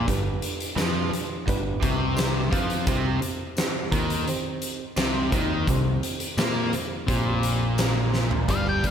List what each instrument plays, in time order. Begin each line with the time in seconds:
0.07 picked electric bass G1, distorted electric guitar G2, reed electric piano D4 G4 B4, kick, closed hi-hat
0.42 closed hi-hat
0.60 closed hi-hat
0.76 picked electric bass F2, distorted electric guitar F3, reed electric piano D4 G4 B4, snare, closed hi-hat, tambourine
1.10 muted overdriven electric guitar stroke, muted picked electric bass stroke, muted distorted electric guitar stroke, closed hi-hat
1.47 picked electric bass G1, distorted electric guitar G2, reed electric piano D4 G4 B4, kick, closed hi-hat
1.82 picked electric bass C2, distorted electric guitar C3, kick, closed hi-hat
2.16 reed electric piano D4 G4 B4, snare, closed hi-hat, tambourine
2.50 picked electric bass F2, distorted electric guitar F3, kick, closed hi-hat
2.70 closed hi-hat
2.87 picked electric bass C2, distorted electric guitar C3, reed electric piano C4 G4 C5, kick, closed hi-hat
3.22 muted overdriven electric guitar stroke, muted distorted electric guitar stroke, closed hi-hat
3.57 reed electric piano C4 G4 C5, snare, closed hi-hat, tambourine
3.92 picked electric bass D#2, distorted electric guitar D#3, kick, closed hi-hat
4.10 closed hi-hat
4.27 reed electric piano C4 G4 C5, closed hi-hat
4.62 closed hi-hat
4.96 picked electric bass C2, distorted electric guitar C3, reed electric piano C4 G4 C5, snare, closed hi-hat, tambourine
5.32 picked electric bass D#2, distorted electric guitar D#3, kick, closed hi-hat
5.67 picked electric bass C2, distorted electric guitar C3, reed electric piano C4 G4 C5, kick, closed hi-hat
6.03 closed hi-hat
6.20 closed hi-hat
6.37 picked electric bass A#2, distorted electric guitar A#3, reed electric piano C4 G4 C5, snare, closed hi-hat, tambourine
6.72 muted distorted electric guitar stroke, muted picked electric bass stroke, muted overdriven electric guitar stroke, closed hi-hat
7.07 picked electric bass A#1, distorted electric guitar A#2, reed electric piano C4 G4 C5, kick, closed hi-hat
7.43 closed hi-hat
7.78 reed electric piano C4 G4 C5, snare, closed hi-hat, tambourine
8.14 snare
8.31 floor tom
8.48 picked electric bass G1, distorted electric guitar G2, twelve-string acoustic guitar G2 E3 G3 B3 D4 G4, overdriven electric guitar G3, lead electric guitar F5, kick, closed hi-hat
8.66 lead electric guitar G5, tambourine
8.84 picked electric bass D2, distorted electric guitar G3, twelve-string acoustic guitar G3 B3 D4 G4, overdriven electric guitar B3, lead electric guitar F5, kick, closed hi-hat, tambourine